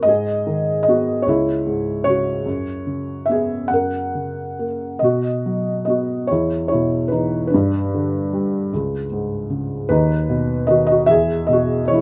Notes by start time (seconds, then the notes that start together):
0.03 G#2 D#5
0.08 G#4
0.47 D#3
0.83 D#5
0.88 B3 F#4
1.22 C#5
1.27 C#2 E4
1.66 G#2
2.04 C#3 C#5
2.09 F#4
2.46 F#2
2.87 C#3
3.26 B3 E5
3.31 G#4
3.68 F#2 F#5
3.73 A#4
4.15 C#3
4.59 A#3
4.99 B2 D#5
5.04 F#4
5.46 F#3
5.85 B3 D#5
5.89 F#4
6.27 E2 C#5
6.32 E4
6.68 E4 C#5
6.74 B2
7.08 D#4 B4
7.13 E3
7.47 D4 B4
7.54 G2
7.94 D3
8.33 G3
8.73 C#2
9.12 G#2
9.50 C#3
9.89 D#2 D#4 B4
10.29 B2
10.67 D#3 F#4 D#5
10.87 D#5
10.91 F#4
11.06 E2 E5
11.11 G#4
11.47 B2 D#5
11.53 F#4
11.85 C#5 D#5
11.91 E3 E4